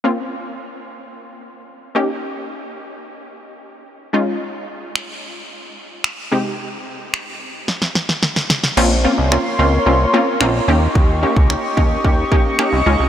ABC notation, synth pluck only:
X:1
M:4/4
L:1/8
Q:1/4=110
K:Bbdor
V:1 name="Synth pluck"
[B,CDF]6- [B,CDF] [B,DEG]- | [B,DEG]6- [B,DEG] [A,DEF]- | [A,DEF]6- [A,DEF] [C,A,CEG]- | [C,A,CEG]6- [C,A,CEG] z |
[B,CDF] [B,CDF] [B,CDF] [B,CDF] [B,CDF] [B,CDF] [B,CDF] [B,DEG]- | [B,DEG] [B,DEG] [B,DEG] [B,DEB] [B,DEG] [B,DEG] [B,DEG] [A,DEF] |]